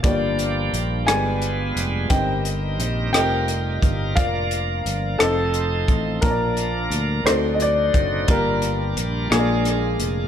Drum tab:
HH |xxxxxx|xxxxxx|xxxxxx|xxxxxx|
SD |---r--|---r--|---r--|---r--|
BD |o-----|o----o|o----o|o----o|

HH |xxxxxx|
SD |---rr-|
BD |o-----|